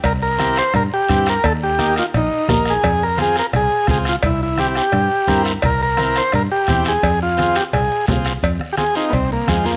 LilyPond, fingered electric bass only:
\new Staff \with { instrumentName = "Fingered electric bass" } { \clef bass \time 4/4 \key f \minor \tempo 4 = 172 c,2 g,8 r8 g,4 | ees,2 bes,,8 r8 bes,,4 | f,2 c,8 r8 des,4 | c,2 g,8 r8 g,4 |
c,2 g,8 r8 e,4 | f,2 c,8 r8 c,4 | f,8 r4. c,4 f,4 | }